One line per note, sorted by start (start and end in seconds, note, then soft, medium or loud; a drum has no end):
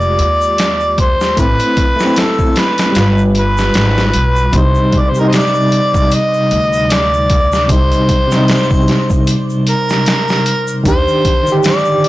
0.00 0.20 F1 medium
0.00 1.39 G#3 medium
0.00 1.39 F4 medium
0.00 1.39 G4 medium
0.00 0.95 D5 loud
0.00 shaker soft
0.19 1.34 D#2 medium
0.19 closed hi-hat medium
0.41 shaker medium
0.58 snare loud
0.58 closed hi-hat medium
0.58 shaker medium
0.80 shaker soft
0.98 1.36 C5 loud
0.98 kick medium
0.98 closed hi-hat medium
1.21 snare soft
1.21 shaker medium
1.37 1.57 A1 medium
1.37 1.94 A3 medium
1.37 1.95 E4 medium
1.37 2.21 B4 loud
1.37 kick loud
1.37 closed hi-hat medium
1.37 shaker medium
1.41 1.96 C4 medium
1.59 closed hi-hat soft
1.59 shaker soft
1.77 kick medium
1.77 closed hi-hat medium
1.96 2.92 A3 medium
1.96 triangle medium
1.96 shaker medium
2.00 2.94 E4 medium
2.00 snare soft
2.04 2.96 C4 loud
2.16 2.60 A4 medium
2.16 snare loud
2.16 closed hi-hat medium
2.16 shaker medium
2.39 kick medium
2.39 triangle medium
2.39 shaker soft
2.56 3.22 B4 medium
2.56 snare loud
2.56 closed hi-hat medium
2.78 snare medium
2.78 closed hi-hat medium
2.78 shaker medium
2.92 3.74 G1 loud
2.92 4.12 G3 medium
2.92 closed hi-hat medium
2.92 shaker medium
2.96 4.15 F4 medium
2.96 snare loud
3.01 4.17 B4 medium
3.18 shaker soft
3.35 closed hi-hat medium
3.39 4.58 B4 loud
3.58 snare soft
3.58 shaker medium
3.74 4.10 G#1 medium
3.74 snare loud
3.74 closed hi-hat medium
3.74 shaker medium
3.97 snare medium
3.97 shaker soft
4.14 4.50 B1 medium
4.14 closed hi-hat medium
4.36 shaker medium
4.52 4.73 C2 loud
4.52 5.09 C3 medium
4.52 5.11 G3 medium
4.52 kick loud
4.52 closed hi-hat medium
4.52 shaker medium
4.57 5.12 D#4 medium
4.57 5.00 C5 loud
4.75 shaker soft
4.92 kick loud
4.92 closed hi-hat medium
4.99 5.11 D5 medium
5.09 7.64 C3 medium
5.09 5.21 C5 medium
5.15 7.66 G3 medium
5.15 shaker medium
5.19 7.68 D#4 medium
5.19 5.29 A#4 medium
5.27 5.30 C5 medium
5.27 5.38 D#5 medium
5.33 6.16 D5 loud
5.33 snare loud
5.33 closed hi-hat medium
5.33 triangle medium
5.33 shaker medium
5.54 shaker soft
5.72 closed hi-hat medium
5.94 kick medium
5.94 shaker medium
6.11 6.94 D#5 loud
6.11 closed hi-hat medium
6.11 shaker medium
6.34 shaker soft
6.51 7.66 D2 medium
6.51 closed hi-hat medium
6.73 shaker medium
6.90 7.66 D5 loud
6.90 snare loud
6.90 closed hi-hat medium
6.90 shaker medium
7.13 shaker soft
7.30 kick loud
7.30 closed hi-hat medium
7.52 snare soft
7.52 shaker medium
7.66 7.89 C2 medium
7.66 8.25 C3 medium
7.66 7.73 D5 medium
7.66 kick loud
7.66 closed hi-hat medium
7.70 8.26 G3 medium
7.70 8.27 D#4 medium
7.70 9.28 C5 loud
7.70 shaker medium
7.92 closed hi-hat soft
7.92 shaker soft
8.09 kick medium
8.09 closed hi-hat medium
8.27 10.79 C3 loud
8.31 10.81 G3 medium
8.31 snare soft
8.31 shaker medium
8.36 10.83 D#4 loud
8.48 snare loud
8.48 closed hi-hat medium
8.48 triangle medium
8.48 shaker medium
8.71 kick medium
8.71 triangle medium
8.71 shaker soft
8.88 snare medium
8.88 closed hi-hat medium
9.10 kick medium
9.10 shaker medium
9.27 closed hi-hat medium
9.27 shaker medium
9.50 shaker soft
9.67 10.82 A#4 loud
9.67 closed hi-hat medium
9.89 snare soft
9.89 shaker medium
10.06 snare loud
10.06 closed hi-hat medium
10.06 shaker medium
10.28 snare medium
10.28 shaker soft
10.46 closed hi-hat medium
10.67 shaker medium
10.84 11.05 D#2 medium
10.84 11.41 D#3 medium
10.84 11.42 D4 medium
10.84 kick loud
10.84 closed hi-hat medium
10.84 shaker medium
10.88 11.43 G4 medium
10.88 11.61 C5 loud
11.08 shaker soft
11.25 kick medium
11.25 closed hi-hat medium
11.43 12.09 D#3 medium
11.43 shaker medium
11.48 12.09 D3 medium
11.52 12.09 G4 medium
11.63 snare loud
11.63 closed hi-hat medium
11.63 triangle medium
11.63 shaker medium
11.67 12.09 D5 medium
11.85 shaker soft
12.04 closed hi-hat medium